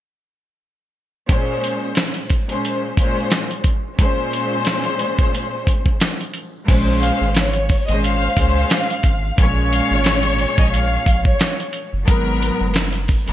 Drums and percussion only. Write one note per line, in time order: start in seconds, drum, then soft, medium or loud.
1.29 kick loud
1.29 closed hi-hat medium
1.64 closed hi-hat medium
1.95 snare loud
1.95 clap medium
1.95 closed hi-hat medium
2.14 closed hi-hat medium
2.30 kick medium
2.30 closed hi-hat medium
2.49 closed hi-hat soft
2.65 closed hi-hat loud
2.97 kick medium
2.97 closed hi-hat medium
3.30 snare loud
3.30 clap medium
3.30 closed hi-hat medium
3.51 closed hi-hat medium
3.64 kick medium
3.64 closed hi-hat medium
3.99 kick loud
3.99 closed hi-hat medium
4.33 closed hi-hat medium
4.65 snare loud
4.65 clap medium
4.65 closed hi-hat medium
4.84 closed hi-hat medium
4.99 closed hi-hat medium
5.19 kick loud
5.19 closed hi-hat soft
5.34 closed hi-hat loud
5.67 kick medium
5.67 closed hi-hat medium
5.86 kick medium
6.00 snare loud
6.00 clap medium
6.00 closed hi-hat medium
6.21 closed hi-hat medium
6.34 closed hi-hat medium
6.68 kick loud
6.68 closed hi-hat loud
6.68 crash medium
7.03 closed hi-hat medium
7.35 snare loud
7.35 clap medium
7.35 closed hi-hat medium
7.53 closed hi-hat medium
7.69 kick medium
7.69 open hi-hat medium
7.88 closed hi-hat medium
8.04 closed hi-hat loud
8.37 kick medium
8.37 closed hi-hat medium
8.70 snare loud
8.70 clap medium
8.70 closed hi-hat medium
8.90 closed hi-hat medium
9.03 kick medium
9.03 closed hi-hat medium
9.38 kick loud
9.38 closed hi-hat loud
9.73 closed hi-hat medium
10.04 snare loud
10.04 clap medium
10.04 closed hi-hat medium
10.23 closed hi-hat medium
10.39 open hi-hat medium
10.58 kick loud
10.58 closed hi-hat medium
10.74 closed hi-hat loud
11.06 kick medium
11.06 closed hi-hat medium
11.25 kick medium
11.40 snare loud
11.40 clap medium
11.40 closed hi-hat medium
11.60 closed hi-hat medium
11.73 closed hi-hat medium
12.08 kick loud
12.08 closed hi-hat loud
12.42 closed hi-hat medium
12.74 snare loud
12.74 clap medium
12.74 closed hi-hat medium
12.93 closed hi-hat medium
13.08 kick medium
13.08 open hi-hat medium
13.28 closed hi-hat medium